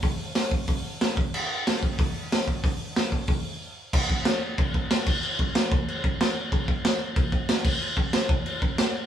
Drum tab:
CC |--------|x-------|--------|x-x-x-xx|
HH |o-o-o-o-|--o-o-o-|o-o-o---|--------|
SD |--o---o-|--o---o-|--o-----|--o---o-|
BD |o--oo--o|---oo--o|o--oo---|oo--oo-o|

CC |x-x-x-x-|x-x-x-xx|x-x-x-x-|
HH |--------|--------|--------|
SD |--o---o-|--o---o-|--o---o-|
BD |-o-o-o--|oo--oo-o|-o-o-o--|